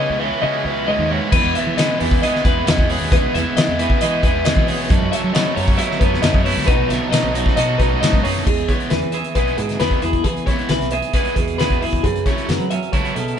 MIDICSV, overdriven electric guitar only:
0, 0, Header, 1, 3, 480
1, 0, Start_track
1, 0, Key_signature, 4, "major"
1, 0, Tempo, 446761
1, 1418, Time_signature, 4, 2, 24, 8
1, 14389, End_track
2, 0, Start_track
2, 0, Title_t, "Overdriven electric guitar"
2, 0, Program_c, 0, 29
2, 0, Note_on_c, 0, 49, 80
2, 0, Note_on_c, 0, 56, 80
2, 0, Note_on_c, 0, 61, 77
2, 0, Note_on_c, 0, 64, 91
2, 202, Note_off_c, 0, 61, 0
2, 204, Note_off_c, 0, 64, 0
2, 209, Note_on_c, 0, 64, 98
2, 215, Note_on_c, 0, 61, 98
2, 227, Note_off_c, 0, 49, 0
2, 227, Note_off_c, 0, 56, 0
2, 231, Note_on_c, 0, 56, 81
2, 240, Note_on_c, 0, 49, 71
2, 424, Note_off_c, 0, 49, 0
2, 437, Note_on_c, 0, 49, 76
2, 447, Note_off_c, 0, 61, 0
2, 450, Note_off_c, 0, 56, 0
2, 454, Note_on_c, 0, 56, 78
2, 460, Note_on_c, 0, 61, 90
2, 467, Note_off_c, 0, 64, 0
2, 471, Note_on_c, 0, 64, 94
2, 684, Note_off_c, 0, 64, 0
2, 688, Note_on_c, 0, 64, 83
2, 692, Note_off_c, 0, 61, 0
2, 705, Note_on_c, 0, 61, 84
2, 708, Note_off_c, 0, 49, 0
2, 710, Note_off_c, 0, 56, 0
2, 714, Note_on_c, 0, 56, 73
2, 721, Note_on_c, 0, 49, 73
2, 919, Note_off_c, 0, 49, 0
2, 932, Note_on_c, 0, 49, 72
2, 934, Note_off_c, 0, 56, 0
2, 938, Note_on_c, 0, 56, 71
2, 939, Note_off_c, 0, 61, 0
2, 952, Note_on_c, 0, 61, 84
2, 955, Note_off_c, 0, 64, 0
2, 960, Note_on_c, 0, 64, 82
2, 1169, Note_off_c, 0, 64, 0
2, 1173, Note_on_c, 0, 64, 81
2, 1178, Note_off_c, 0, 61, 0
2, 1191, Note_on_c, 0, 61, 69
2, 1205, Note_off_c, 0, 56, 0
2, 1210, Note_on_c, 0, 56, 59
2, 1402, Note_off_c, 0, 49, 0
2, 1410, Note_off_c, 0, 61, 0
2, 1423, Note_on_c, 0, 52, 90
2, 1429, Note_off_c, 0, 56, 0
2, 1434, Note_on_c, 0, 56, 95
2, 1445, Note_on_c, 0, 59, 98
2, 1451, Note_off_c, 0, 64, 0
2, 1455, Note_on_c, 0, 64, 109
2, 1662, Note_off_c, 0, 64, 0
2, 1666, Note_on_c, 0, 64, 77
2, 1677, Note_off_c, 0, 59, 0
2, 1681, Note_on_c, 0, 59, 65
2, 1689, Note_off_c, 0, 56, 0
2, 1693, Note_on_c, 0, 56, 61
2, 1900, Note_off_c, 0, 52, 0
2, 1904, Note_on_c, 0, 52, 84
2, 1909, Note_off_c, 0, 56, 0
2, 1914, Note_on_c, 0, 56, 85
2, 1922, Note_off_c, 0, 59, 0
2, 1926, Note_on_c, 0, 59, 81
2, 1934, Note_off_c, 0, 64, 0
2, 1938, Note_on_c, 0, 64, 88
2, 2138, Note_off_c, 0, 64, 0
2, 2142, Note_on_c, 0, 64, 94
2, 2151, Note_off_c, 0, 59, 0
2, 2155, Note_on_c, 0, 59, 95
2, 2162, Note_off_c, 0, 56, 0
2, 2166, Note_on_c, 0, 56, 77
2, 2169, Note_off_c, 0, 52, 0
2, 2173, Note_on_c, 0, 52, 78
2, 2391, Note_off_c, 0, 52, 0
2, 2395, Note_on_c, 0, 52, 77
2, 2397, Note_off_c, 0, 56, 0
2, 2401, Note_on_c, 0, 56, 81
2, 2408, Note_off_c, 0, 59, 0
2, 2412, Note_on_c, 0, 59, 83
2, 2420, Note_off_c, 0, 64, 0
2, 2424, Note_on_c, 0, 64, 80
2, 2626, Note_off_c, 0, 64, 0
2, 2630, Note_on_c, 0, 64, 98
2, 2641, Note_off_c, 0, 59, 0
2, 2645, Note_on_c, 0, 59, 83
2, 2649, Note_off_c, 0, 56, 0
2, 2653, Note_on_c, 0, 56, 86
2, 2661, Note_off_c, 0, 52, 0
2, 2665, Note_on_c, 0, 52, 71
2, 2868, Note_off_c, 0, 52, 0
2, 2872, Note_on_c, 0, 52, 65
2, 2886, Note_off_c, 0, 56, 0
2, 2890, Note_on_c, 0, 56, 76
2, 2892, Note_off_c, 0, 59, 0
2, 2896, Note_on_c, 0, 59, 75
2, 2900, Note_off_c, 0, 64, 0
2, 2905, Note_on_c, 0, 64, 79
2, 3115, Note_off_c, 0, 64, 0
2, 3119, Note_on_c, 0, 64, 82
2, 3132, Note_off_c, 0, 59, 0
2, 3136, Note_on_c, 0, 59, 67
2, 3149, Note_off_c, 0, 56, 0
2, 3153, Note_on_c, 0, 56, 64
2, 3360, Note_off_c, 0, 52, 0
2, 3365, Note_on_c, 0, 52, 83
2, 3373, Note_off_c, 0, 56, 0
2, 3378, Note_on_c, 0, 56, 102
2, 3379, Note_off_c, 0, 59, 0
2, 3383, Note_on_c, 0, 59, 98
2, 3393, Note_off_c, 0, 64, 0
2, 3397, Note_on_c, 0, 64, 97
2, 3591, Note_off_c, 0, 64, 0
2, 3595, Note_on_c, 0, 64, 77
2, 3604, Note_off_c, 0, 59, 0
2, 3608, Note_on_c, 0, 59, 72
2, 3626, Note_off_c, 0, 56, 0
2, 3631, Note_on_c, 0, 56, 61
2, 3831, Note_off_c, 0, 52, 0
2, 3836, Note_on_c, 0, 52, 81
2, 3852, Note_off_c, 0, 56, 0
2, 3855, Note_off_c, 0, 59, 0
2, 3857, Note_on_c, 0, 56, 87
2, 3859, Note_on_c, 0, 59, 87
2, 3865, Note_off_c, 0, 64, 0
2, 3869, Note_on_c, 0, 64, 93
2, 4067, Note_off_c, 0, 64, 0
2, 4071, Note_on_c, 0, 64, 88
2, 4074, Note_off_c, 0, 59, 0
2, 4078, Note_on_c, 0, 59, 87
2, 4089, Note_off_c, 0, 56, 0
2, 4094, Note_on_c, 0, 56, 79
2, 4096, Note_off_c, 0, 52, 0
2, 4101, Note_on_c, 0, 52, 87
2, 4294, Note_off_c, 0, 52, 0
2, 4307, Note_on_c, 0, 52, 81
2, 4308, Note_off_c, 0, 56, 0
2, 4320, Note_on_c, 0, 56, 85
2, 4326, Note_off_c, 0, 59, 0
2, 4330, Note_off_c, 0, 64, 0
2, 4331, Note_on_c, 0, 59, 86
2, 4343, Note_on_c, 0, 64, 77
2, 4525, Note_off_c, 0, 64, 0
2, 4537, Note_on_c, 0, 64, 95
2, 4547, Note_off_c, 0, 59, 0
2, 4550, Note_off_c, 0, 56, 0
2, 4551, Note_on_c, 0, 59, 88
2, 4561, Note_off_c, 0, 52, 0
2, 4563, Note_on_c, 0, 56, 86
2, 4574, Note_on_c, 0, 52, 83
2, 4763, Note_off_c, 0, 52, 0
2, 4776, Note_on_c, 0, 52, 70
2, 4779, Note_off_c, 0, 56, 0
2, 4792, Note_on_c, 0, 56, 74
2, 4793, Note_off_c, 0, 59, 0
2, 4793, Note_off_c, 0, 64, 0
2, 4798, Note_on_c, 0, 59, 76
2, 4806, Note_on_c, 0, 64, 88
2, 5001, Note_off_c, 0, 64, 0
2, 5014, Note_on_c, 0, 64, 86
2, 5028, Note_off_c, 0, 59, 0
2, 5032, Note_on_c, 0, 59, 73
2, 5035, Note_off_c, 0, 56, 0
2, 5047, Note_on_c, 0, 56, 64
2, 5243, Note_off_c, 0, 64, 0
2, 5244, Note_off_c, 0, 52, 0
2, 5257, Note_on_c, 0, 42, 102
2, 5260, Note_off_c, 0, 56, 0
2, 5264, Note_on_c, 0, 49, 92
2, 5274, Note_off_c, 0, 59, 0
2, 5274, Note_on_c, 0, 54, 96
2, 5279, Note_on_c, 0, 57, 92
2, 5287, Note_on_c, 0, 61, 106
2, 5496, Note_off_c, 0, 61, 0
2, 5500, Note_on_c, 0, 61, 80
2, 5516, Note_off_c, 0, 57, 0
2, 5520, Note_on_c, 0, 57, 76
2, 5532, Note_off_c, 0, 54, 0
2, 5536, Note_on_c, 0, 54, 61
2, 5714, Note_off_c, 0, 49, 0
2, 5727, Note_on_c, 0, 49, 79
2, 5730, Note_off_c, 0, 54, 0
2, 5734, Note_on_c, 0, 54, 89
2, 5738, Note_off_c, 0, 42, 0
2, 5746, Note_off_c, 0, 57, 0
2, 5750, Note_on_c, 0, 57, 90
2, 5751, Note_off_c, 0, 61, 0
2, 5756, Note_on_c, 0, 61, 89
2, 5960, Note_off_c, 0, 61, 0
2, 5965, Note_on_c, 0, 61, 98
2, 5975, Note_off_c, 0, 57, 0
2, 5980, Note_on_c, 0, 57, 86
2, 5985, Note_off_c, 0, 49, 0
2, 5988, Note_off_c, 0, 54, 0
2, 5992, Note_on_c, 0, 54, 83
2, 5998, Note_on_c, 0, 49, 85
2, 6001, Note_on_c, 0, 42, 77
2, 6195, Note_off_c, 0, 49, 0
2, 6208, Note_on_c, 0, 49, 80
2, 6211, Note_off_c, 0, 54, 0
2, 6215, Note_on_c, 0, 54, 80
2, 6217, Note_off_c, 0, 57, 0
2, 6230, Note_on_c, 0, 57, 92
2, 6235, Note_off_c, 0, 61, 0
2, 6239, Note_on_c, 0, 61, 86
2, 6447, Note_off_c, 0, 61, 0
2, 6448, Note_off_c, 0, 57, 0
2, 6451, Note_on_c, 0, 61, 88
2, 6461, Note_on_c, 0, 57, 88
2, 6465, Note_off_c, 0, 49, 0
2, 6468, Note_off_c, 0, 42, 0
2, 6469, Note_off_c, 0, 54, 0
2, 6473, Note_on_c, 0, 54, 82
2, 6478, Note_on_c, 0, 49, 79
2, 6482, Note_on_c, 0, 42, 69
2, 6664, Note_off_c, 0, 49, 0
2, 6677, Note_on_c, 0, 49, 78
2, 6686, Note_off_c, 0, 54, 0
2, 6687, Note_off_c, 0, 57, 0
2, 6690, Note_on_c, 0, 54, 82
2, 6700, Note_on_c, 0, 57, 84
2, 6709, Note_off_c, 0, 61, 0
2, 6713, Note_on_c, 0, 61, 87
2, 6918, Note_off_c, 0, 61, 0
2, 6922, Note_on_c, 0, 61, 81
2, 6928, Note_off_c, 0, 57, 0
2, 6941, Note_on_c, 0, 57, 72
2, 6948, Note_off_c, 0, 42, 0
2, 6952, Note_off_c, 0, 54, 0
2, 6956, Note_on_c, 0, 54, 62
2, 7141, Note_off_c, 0, 49, 0
2, 7145, Note_on_c, 0, 47, 87
2, 7157, Note_off_c, 0, 54, 0
2, 7158, Note_off_c, 0, 57, 0
2, 7162, Note_on_c, 0, 54, 98
2, 7171, Note_on_c, 0, 57, 94
2, 7177, Note_off_c, 0, 61, 0
2, 7187, Note_on_c, 0, 63, 98
2, 7391, Note_off_c, 0, 63, 0
2, 7404, Note_on_c, 0, 63, 74
2, 7409, Note_off_c, 0, 57, 0
2, 7421, Note_on_c, 0, 57, 71
2, 7427, Note_off_c, 0, 54, 0
2, 7440, Note_on_c, 0, 54, 61
2, 7624, Note_off_c, 0, 47, 0
2, 7635, Note_off_c, 0, 54, 0
2, 7637, Note_on_c, 0, 47, 82
2, 7648, Note_on_c, 0, 54, 77
2, 7651, Note_off_c, 0, 57, 0
2, 7653, Note_off_c, 0, 63, 0
2, 7664, Note_on_c, 0, 57, 78
2, 7666, Note_on_c, 0, 63, 96
2, 7878, Note_off_c, 0, 63, 0
2, 7891, Note_on_c, 0, 63, 92
2, 7892, Note_off_c, 0, 57, 0
2, 7900, Note_off_c, 0, 54, 0
2, 7904, Note_on_c, 0, 57, 84
2, 7905, Note_off_c, 0, 47, 0
2, 7913, Note_on_c, 0, 54, 74
2, 7918, Note_on_c, 0, 47, 72
2, 8122, Note_off_c, 0, 47, 0
2, 8132, Note_off_c, 0, 54, 0
2, 8135, Note_on_c, 0, 47, 79
2, 8142, Note_off_c, 0, 57, 0
2, 8145, Note_on_c, 0, 54, 80
2, 8149, Note_off_c, 0, 63, 0
2, 8155, Note_on_c, 0, 57, 78
2, 8162, Note_on_c, 0, 63, 88
2, 8353, Note_off_c, 0, 63, 0
2, 8365, Note_off_c, 0, 57, 0
2, 8366, Note_on_c, 0, 63, 79
2, 8378, Note_on_c, 0, 57, 89
2, 8379, Note_off_c, 0, 54, 0
2, 8390, Note_off_c, 0, 47, 0
2, 8392, Note_on_c, 0, 54, 77
2, 8403, Note_on_c, 0, 47, 71
2, 8598, Note_off_c, 0, 47, 0
2, 8611, Note_on_c, 0, 47, 78
2, 8617, Note_off_c, 0, 54, 0
2, 8627, Note_off_c, 0, 57, 0
2, 8630, Note_on_c, 0, 54, 71
2, 8637, Note_off_c, 0, 63, 0
2, 8640, Note_on_c, 0, 57, 77
2, 8650, Note_on_c, 0, 63, 79
2, 8838, Note_off_c, 0, 63, 0
2, 8851, Note_on_c, 0, 63, 74
2, 8854, Note_off_c, 0, 57, 0
2, 8867, Note_on_c, 0, 57, 70
2, 8868, Note_off_c, 0, 54, 0
2, 8881, Note_on_c, 0, 54, 59
2, 9074, Note_off_c, 0, 47, 0
2, 9075, Note_off_c, 0, 63, 0
2, 9083, Note_off_c, 0, 57, 0
2, 9088, Note_off_c, 0, 54, 0
2, 9330, Note_on_c, 0, 64, 88
2, 9341, Note_on_c, 0, 59, 85
2, 9342, Note_on_c, 0, 56, 80
2, 9346, Note_on_c, 0, 52, 74
2, 9568, Note_off_c, 0, 52, 0
2, 9568, Note_off_c, 0, 64, 0
2, 9574, Note_off_c, 0, 56, 0
2, 9574, Note_off_c, 0, 59, 0
2, 10056, Note_on_c, 0, 52, 87
2, 10056, Note_on_c, 0, 56, 85
2, 10061, Note_on_c, 0, 59, 87
2, 10067, Note_on_c, 0, 64, 89
2, 10291, Note_off_c, 0, 52, 0
2, 10291, Note_off_c, 0, 56, 0
2, 10294, Note_off_c, 0, 59, 0
2, 10294, Note_off_c, 0, 64, 0
2, 10531, Note_on_c, 0, 52, 86
2, 10532, Note_on_c, 0, 56, 85
2, 10535, Note_on_c, 0, 64, 85
2, 10540, Note_on_c, 0, 59, 81
2, 10766, Note_off_c, 0, 64, 0
2, 10768, Note_off_c, 0, 52, 0
2, 10769, Note_off_c, 0, 56, 0
2, 10773, Note_off_c, 0, 59, 0
2, 11243, Note_on_c, 0, 64, 98
2, 11254, Note_on_c, 0, 56, 80
2, 11255, Note_on_c, 0, 59, 90
2, 11258, Note_on_c, 0, 52, 70
2, 11481, Note_off_c, 0, 52, 0
2, 11485, Note_off_c, 0, 56, 0
2, 11485, Note_off_c, 0, 64, 0
2, 11490, Note_off_c, 0, 59, 0
2, 11965, Note_on_c, 0, 52, 79
2, 11970, Note_on_c, 0, 56, 85
2, 11978, Note_on_c, 0, 59, 86
2, 11982, Note_on_c, 0, 64, 97
2, 12195, Note_off_c, 0, 64, 0
2, 12197, Note_off_c, 0, 59, 0
2, 12202, Note_off_c, 0, 56, 0
2, 12206, Note_off_c, 0, 52, 0
2, 12447, Note_on_c, 0, 52, 81
2, 12461, Note_on_c, 0, 56, 85
2, 12466, Note_on_c, 0, 59, 92
2, 12469, Note_on_c, 0, 64, 90
2, 12687, Note_off_c, 0, 52, 0
2, 12688, Note_off_c, 0, 64, 0
2, 12692, Note_off_c, 0, 59, 0
2, 12694, Note_off_c, 0, 56, 0
2, 13181, Note_on_c, 0, 61, 99
2, 13188, Note_on_c, 0, 57, 91
2, 13196, Note_on_c, 0, 54, 86
2, 13199, Note_on_c, 0, 49, 75
2, 13409, Note_off_c, 0, 49, 0
2, 13409, Note_off_c, 0, 57, 0
2, 13412, Note_off_c, 0, 54, 0
2, 13414, Note_off_c, 0, 61, 0
2, 13894, Note_on_c, 0, 49, 84
2, 13900, Note_on_c, 0, 54, 86
2, 13903, Note_on_c, 0, 57, 92
2, 13912, Note_on_c, 0, 61, 89
2, 14124, Note_off_c, 0, 54, 0
2, 14124, Note_off_c, 0, 61, 0
2, 14125, Note_off_c, 0, 57, 0
2, 14131, Note_off_c, 0, 49, 0
2, 14389, End_track
3, 0, Start_track
3, 0, Title_t, "Muted overdriven electric guitar strokes"
3, 9088, Note_on_c, 9, 29, 38
3, 9195, Note_off_c, 9, 29, 0
3, 9580, Note_on_c, 9, 29, 49
3, 9688, Note_off_c, 9, 29, 0
3, 9822, Note_on_c, 9, 29, 43
3, 9929, Note_off_c, 9, 29, 0
3, 10306, Note_on_c, 9, 29, 48
3, 10413, Note_off_c, 9, 29, 0
3, 10779, Note_on_c, 9, 29, 50
3, 10886, Note_off_c, 9, 29, 0
3, 11025, Note_on_c, 9, 29, 46
3, 11132, Note_off_c, 9, 29, 0
3, 11494, Note_on_c, 9, 29, 43
3, 11601, Note_off_c, 9, 29, 0
3, 11733, Note_on_c, 9, 29, 48
3, 11841, Note_off_c, 9, 29, 0
3, 12208, Note_on_c, 9, 29, 51
3, 12315, Note_off_c, 9, 29, 0
3, 12701, Note_on_c, 9, 29, 58
3, 12809, Note_off_c, 9, 29, 0
3, 12945, Note_on_c, 9, 29, 44
3, 13053, Note_off_c, 9, 29, 0
3, 13422, Note_on_c, 9, 29, 47
3, 13529, Note_off_c, 9, 29, 0
3, 13659, Note_on_c, 9, 29, 50
3, 13767, Note_off_c, 9, 29, 0
3, 14137, Note_on_c, 9, 29, 45
3, 14245, Note_off_c, 9, 29, 0
3, 14389, End_track
0, 0, End_of_file